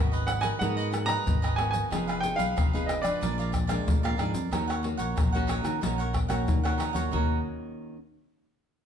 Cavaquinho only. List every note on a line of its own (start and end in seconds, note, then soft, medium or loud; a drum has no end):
0.00 0.10 F#4 medium
0.00 0.11 G#4 medium
0.00 0.11 B4 medium
0.00 0.10 D#5 medium
0.12 0.41 G#4 medium
0.12 0.41 B4 medium
0.12 0.40 D#5 medium
0.41 0.59 G#4 medium
0.41 0.58 B4 medium
0.41 0.58 D#5 medium
0.59 0.75 F#4 medium
0.59 0.76 G#4 medium
0.59 0.76 B4 medium
0.59 0.76 D#5 medium
0.77 0.91 G#4 medium
0.77 0.91 B4 medium
0.77 0.91 D#5 medium
0.92 muted cavaquinho stroke soft
1.07 1.41 G#4 medium
1.07 1.40 B4 medium
1.07 1.40 D#5 medium
1.42 1.56 G#4 medium
1.42 1.57 B4 medium
1.42 1.57 D#5 medium
1.56 1.89 F#4 medium
1.56 1.89 G#4 medium
1.56 1.90 B4 medium
1.56 1.90 D#5 medium
1.90 2.06 D#4 soft
1.90 2.06 G#4 medium
1.90 2.07 B4 medium
1.90 2.06 F5 medium
2.07 2.22 G#4 medium
2.07 2.22 B4 medium
2.07 2.22 F5 medium
2.22 muted cavaquinho stroke soft
2.38 2.55 G#4 medium
2.38 2.55 B4 medium
2.38 2.54 F5 medium
2.56 2.71 D#4 soft
2.56 2.72 G#4 medium
2.56 2.72 B4 medium
2.56 2.72 F5 medium
2.73 3.03 G#4 medium
2.73 3.02 B4 medium
2.73 3.01 F5 medium
3.03 3.20 G#4 medium
3.03 3.20 B4 medium
3.03 3.19 F5 medium
3.21 3.37 G#4 medium
3.21 3.37 A#4 medium
3.21 3.37 D5 medium
3.21 3.37 F5 medium
3.38 3.52 A#4 medium
3.38 3.52 D5 medium
3.38 3.52 F5 medium
3.52 muted cavaquinho stroke soft
3.67 4.01 A#4 medium
3.67 4.00 D5 medium
3.67 4.01 F5 medium
4.03 4.17 A#4 medium
4.03 4.18 D5 medium
4.03 4.18 F5 medium
4.18 4.50 G#4 medium
4.18 4.50 A#4 medium
4.18 4.51 D5 medium
4.18 4.51 F5 medium
4.51 4.67 D#4 medium
4.51 4.67 A#4 medium
4.51 4.67 C#5 medium
4.51 4.66 F#5 soft
4.68 4.81 A#4 medium
4.68 4.82 C#5 medium
4.68 4.82 F#5 medium
4.83 muted cavaquinho stroke soft
4.97 5.15 A#4 medium
4.97 5.15 C#5 medium
4.97 5.14 F#5 medium
5.16 5.32 D#4 medium
5.16 5.32 A#4 soft
5.16 5.32 C#5 medium
5.16 5.31 F#5 medium
5.32 5.47 A#4 medium
5.32 5.47 C#5 medium
5.32 5.48 F#5 medium
5.47 5.80 D#4 medium
5.47 5.80 A#4 medium
5.47 5.80 C#5 medium
5.47 5.81 F#5 medium
5.81 5.97 D#4 medium
5.81 5.97 A#4 medium
5.81 5.98 C#5 medium
5.81 5.97 F#5 medium
5.98 6.12 A#4 medium
5.98 6.13 C#5 medium
5.98 6.13 F#5 medium
6.13 muted cavaquinho stroke soft
6.29 6.62 A#4 medium
6.29 6.62 C#5 medium
6.29 6.61 F#5 medium
6.63 6.77 A#4 medium
6.63 6.78 C#5 medium
6.63 6.78 F#5 medium
6.78 6.94 D#4 medium
6.78 6.94 A#4 medium
6.78 6.93 C#5 medium
6.78 6.92 F#5 medium
6.93 7.11 A#4 medium
6.93 7.10 C#5 medium
6.93 7.10 F#5 medium
7.11 7.38 D#4 medium
7.11 7.39 A#4 medium
7.11 7.39 C#5 medium
7.11 7.39 F#5 medium